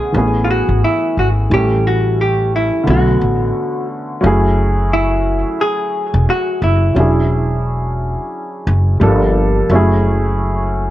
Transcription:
Already playing: upright piano D3 A3 B3 C#4 F#4, hollow-body jazz guitar G#4
0.12 upright bass A1, upright piano E3 A3 B3
0.17 upright piano C#4 G#4
0.44 hollow-body jazz guitar F4
0.51 hollow-body jazz guitar F#4
0.69 upright bass G#1
0.84 hollow-body jazz guitar E4
1.17 upright bass G#1, hollow-body jazz guitar F#4
1.50 upright bass A1, upright piano E3 G3 A3, hollow-body jazz guitar G4
1.54 upright piano C#4 A4
1.87 hollow-body jazz guitar F#4
2.21 hollow-body jazz guitar G4
2.56 hollow-body jazz guitar E4
2.83 upright bass B1, upright piano D3 A3 B3
2.88 upright piano C#4 F#4, hollow-body jazz guitar F#4
3.21 upright bass A1
4.21 upright bass F#1, upright piano F#3 A3 C#4
4.25 upright piano E4 G#4
4.93 hollow-body jazz guitar E4
5.61 hollow-body jazz guitar G#4
6.14 upright bass E1
6.30 hollow-body jazz guitar F#4
6.62 upright bass F#1, hollow-body jazz guitar E4
6.95 upright bass E1, upright piano F#3 C#4 D4
6.99 upright piano E4 G#4
8.67 upright bass F#1
9.00 upright bass G1, upright piano F3 G3 A#3 D4 A4
9.70 upright bass F#1, upright piano F#3 A3 C#4
9.74 upright piano E4 G#4

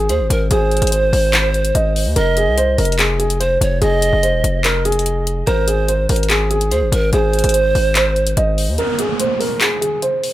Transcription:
Already playing: 808-style bass G#1
0.09 808-style bass D#2, pan flute G#4, grand piano C5, closed hi-hat
0.20 808-style bass G#1
0.30 808-style bass G#1, pan flute A#4, closed hi-hat
0.51 808-style bass G#1, grand piano G#4, pan flute C5, closed hi-hat
0.71 closed hi-hat
0.77 closed hi-hat
0.82 808-style bass G#1, closed hi-hat
0.87 grand piano C5, closed hi-hat
0.92 closed hi-hat
1.13 808-style bass G#1, open hi-hat
1.33 grand piano C5, clap, closed hi-hat
1.54 closed hi-hat
1.65 closed hi-hat
1.75 808-style bass G#1, grand piano D#5, closed hi-hat
1.96 open hi-hat
2.06 808-style bass D#2
2.16 808-style bass F1, grand piano A#4, pan flute D#5, closed hi-hat
2.37 grand piano G#4, closed hi-hat
2.47 808-style bass C2
2.58 grand piano C5, closed hi-hat
2.78 808-style bass F1, grand piano A#4, closed hi-hat, open hi-hat
2.85 closed hi-hat
2.92 closed hi-hat
2.99 grand piano G#4, clap, closed hi-hat
3.19 grand piano G#4, closed hi-hat
3.30 closed hi-hat
3.40 grand piano C5, pan flute C5, closed hi-hat
3.61 808-style bass F1, pan flute C#5, closed hi-hat
3.82 808-style bass F1, grand piano G#4, pan flute D#5, closed hi-hat
4.02 closed hi-hat
4.13 808-style bass F1
4.23 grand piano C5, closed hi-hat
4.33 808-style bass D#1
4.44 808-style bass F1, closed hi-hat
4.64 grand piano A#4, clap, closed hi-hat
4.85 grand piano G#4, closed hi-hat
4.92 closed hi-hat
4.99 closed hi-hat
5.06 closed hi-hat
5.27 closed hi-hat
5.47 808-style bass G#1, grand piano A#4, pan flute C5, closed hi-hat
5.68 grand piano G#4, closed hi-hat
5.88 grand piano C5, closed hi-hat
6.09 808-style bass G#1, grand piano A#4, closed hi-hat, open hi-hat
6.16 closed hi-hat
6.23 closed hi-hat
6.30 grand piano G#4, clap, closed hi-hat
6.51 grand piano G#4, closed hi-hat
6.61 closed hi-hat
6.71 808-style bass D#2, pan flute G#4, grand piano C5, closed hi-hat
6.82 808-style bass G#1
6.92 808-style bass G#1, pan flute A#4, closed hi-hat
7.13 808-style bass G#1, grand piano G#4, pan flute C5, closed hi-hat
7.33 closed hi-hat
7.39 closed hi-hat
7.44 808-style bass G#1, closed hi-hat
7.49 grand piano C5, closed hi-hat
7.54 closed hi-hat
7.75 808-style bass G#1, open hi-hat
7.95 grand piano C5, clap, closed hi-hat
8.16 closed hi-hat
8.27 closed hi-hat
8.37 808-style bass G#1, grand piano D#5, closed hi-hat
8.58 open hi-hat
8.68 808-style bass D#2
8.78 grand piano A#4, closed hi-hat, downlifter
8.99 grand piano G#4, closed hi-hat
9.20 grand piano C5, closed hi-hat
9.40 grand piano A#4, open hi-hat
9.61 grand piano G#4, clap, closed hi-hat
9.81 grand piano G#4, closed hi-hat
10.02 grand piano C5, closed hi-hat
10.24 open hi-hat

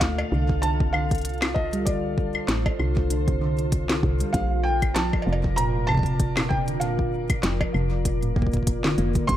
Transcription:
Already playing: fm bass D2, ambient pad F4 A4 F5
0.00 synth pluck A3, felt piano F5, kick, snare, closed hi-hat
0.18 cowbell, claves
0.32 fm bass C2, synth pluck D3
0.49 kick
0.62 synth pluck D3, felt piano A5, closed hi-hat
0.80 synth pluck C3, kick
0.93 synth pluck D3, felt piano F5, claves
1.11 kick, closed hi-hat
1.15 closed hi-hat
1.18 closed hi-hat
1.21 closed hi-hat
1.25 closed hi-hat
1.33 closed hi-hat
1.38 closed hi-hat
1.42 synth pluck D3, snare, closed hi-hat, claves
1.54 synth pluck D3, felt piano D#5, kick
1.73 synth pluck G3, closed hi-hat
1.85 synth pluck D3, ambient pad C5, felt piano D5, kick, closed hi-hat
2.18 kick
2.35 claves
2.48 fm bass A1, synth pluck A3, snare, closed hi-hat
2.66 kick, cowbell, claves
2.79 fm bass C2, synth pluck D3, claves
2.97 kick
3.10 synth pluck D3, closed hi-hat
3.28 synth pluck C3, kick, closed hi-hat
3.41 synth pluck D3
3.59 closed hi-hat
3.72 kick, closed hi-hat
3.89 synth pluck D3, snare, closed hi-hat
4.03 fm bass C2, synth pluck D3, kick
4.20 synth pluck G3, closed hi-hat
4.33 fm bass A#1, synth pluck A#2, ambient pad A#4 D5, felt piano F5, kick, closed hi-hat
4.63 felt piano G5
4.82 kick, closed hi-hat, claves
4.94 synth pluck F3, felt piano A5, snare, closed hi-hat
5.13 kick, cowbell, claves
5.22 cowbell
5.27 fm bass F1, synth pluck C3
5.33 cowbell
5.44 kick
5.56 synth pluck A#2, felt piano A#5, closed hi-hat
5.75 synth pluck A2
5.87 synth pluck C3, felt piano A5, kick, claves
5.92 kick
5.95 kick
5.97 kick
5.99 kick
6.03 kick, closed hi-hat
6.20 kick, closed hi-hat
6.37 synth pluck A#2, snare, closed hi-hat, claves
6.49 synth pluck C3, felt piano G5, kick
6.68 synth pluck D3, closed hi-hat
6.80 synth pluck A#2, felt piano F5, closed hi-hat
6.99 kick
7.30 kick, closed hi-hat, claves
7.43 fm bass F1, synth pluck F3, snare, closed hi-hat
7.61 kick, cowbell, claves
7.74 fm bass F1, synth pluck C3, claves
8.05 synth pluck A#2, kick, closed hi-hat
8.22 synth pluck A2, closed hi-hat
8.36 synth pluck A#3, kick
8.42 kick
8.47 kick
8.53 kick, closed hi-hat
8.57 kick
8.63 kick
8.67 kick, closed hi-hat
8.84 synth pluck D3, snare
8.98 fm bass F1, synth pluck A#3, closed hi-hat
9.15 synth pluck D3, kick, closed hi-hat
9.27 fm bass G1, ambient pad G3 G4 A#4 D5, synth pluck G3, felt piano C6, kick, closed hi-hat

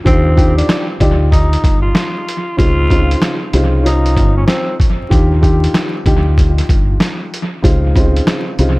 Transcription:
0.04 fingered electric bass D#2, grand piano D#3 D4 F4 G4, tenor saxophone C4, kick, closed hi-hat
0.36 grand piano D#3 D4 F4 G4, kick, closed hi-hat
0.58 tenor saxophone D4, closed hi-hat
0.69 snare, closed hi-hat
1.00 fingered electric bass D2, grand piano D#4 F4 G4 D5, kick, closed hi-hat
1.32 tenor saxophone D#4, kick, closed hi-hat
1.53 closed hi-hat
1.64 fingered electric bass G1, kick, closed hi-hat
1.82 tenor saxophone F4
1.95 snare, closed hi-hat
2.29 closed hi-hat
2.57 fingered electric bass C#2, grand piano C#3 C4 D#4 F4, tenor saxophone F4, kick, closed hi-hat
2.90 grand piano C#3 C4 D#4 F4, kick, closed hi-hat
3.11 closed hi-hat
3.22 snare, closed hi-hat
3.53 fingered electric bass C2, grand piano C#3 C4 D#4 F4, closed hi-hat
3.84 grand piano C4 C#4 D#4 F4, tenor saxophone D#4, closed hi-hat
4.06 closed hi-hat
4.17 fingered electric bass G1, kick, closed hi-hat
4.37 tenor saxophone C#4
4.46 tenor saxophone C4, snare, closed hi-hat
4.80 kick, closed hi-hat
5.09 fingered electric bass D#2, grand piano D#3 D4 F4 G4, kick, closed hi-hat
5.41 grand piano D#3 D4 F4 G4, kick, closed hi-hat
5.64 closed hi-hat
5.74 snare, closed hi-hat
6.05 fingered electric bass D2, grand piano D4 D#4 F4 G4, kick, closed hi-hat
6.38 kick, closed hi-hat
6.58 closed hi-hat
6.69 fingered electric bass G1, kick, closed hi-hat
7.00 snare, closed hi-hat
7.34 closed hi-hat
7.62 fingered electric bass C#2, grand piano C#3 C4 D#4 F4, kick, closed hi-hat
7.95 grand piano C#3 C4 D#4 F4, kick, closed hi-hat
8.16 closed hi-hat
8.27 snare, closed hi-hat
8.59 fingered electric bass C2, grand piano C#3 C4 D#4 F4, closed hi-hat

